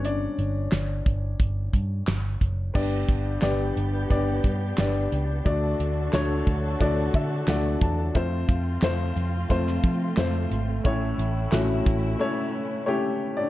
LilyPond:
<<
  \new Staff \with { instrumentName = "String section" } { \time 4/4 \key g \lydian \tempo 4 = 89 << { r1 | <d' g'>1 | <d fis' a'>1 | <c' f'>1 |
<cis' e'>1 | } \\ { r1 | b1 | r1 | a1~ |
a1 | } >> }
  \new Staff \with { instrumentName = "Upright piano" } { \time 4/4 \key g \lydian << { <d' d''>2. r4 | r1 | r2 r8 e''8 fis''8 a''8 | r1 |
r2. cis''8. <d' d''>16 | } \\ { r1 | <b d' g' d''>4 <b d' g' d''>4 <b d' g' d''>4 <b d' g' d''>4 | <a d' fis' d''>4 <a d' fis' cis''>4 <a d' fis' d''>4 <a d' fis' d''>4 | <a c' f' c''>4 <a c' f' c''>4 <a c' f' c''>4 <a c' f' c''>4 |
<a cis' e' cis''>4 <a cis' e' fis'>4 <a cis' e' cis''>4 <a cis' e' g'>4 | } >> }
  \new Staff \with { instrumentName = "Upright piano" } { \clef bass \time 4/4 \key g \lydian <g b d'>4 r2. | g,4. r2 r8 | d4. r2 r8 | r1 |
a,4. r2 r8 | }
  \new Staff \with { instrumentName = "Picked electric bass" } { \clef bass \time 4/4 \key g \lydian g,,8 g,,8 g,,8 g,,8 g,,8 g,8 g,,8 fis,,8 | g,,8 g,,8 g,,8 g,,8 g,,8 g,8 g,,8 cis,8 | d,8 d,8 d,8 d,8 d,8 d8 d,8 e,8 | f,8 f,8 f,8 f,8 f,8 f8 f,8 gis,,8 |
a,,8 a,,8 a,,8 a,,8 r2 | }
  \new DrumStaff \with { instrumentName = "Drums" } \drummode { \time 4/4 hh8 hh8 <hc hh sn>8 <hh bd>8 <hh bd>8 <hh bd>8 <hc hh sn>8 <hh bd>8 | <cymc bd>8 <hh bd>8 <hc hh sn>8 hh8 <hh bd>8 <hh bd>8 <hc hh sn>8 hh8 | <hh bd>8 hh8 <hc hh sn>8 <hh bd>8 <hh bd>8 <hh bd>8 <hc hh sn>8 <hh bd>8 | <hh bd>8 <hh bd>8 <hc hh sn>8 hh8 <hh bd>16 sn16 <hh bd>8 <hc hh sn>8 hh8 |
<hh bd>8 hh8 <hc hh sn>8 <hh bd>8 r4 r4 | }
>>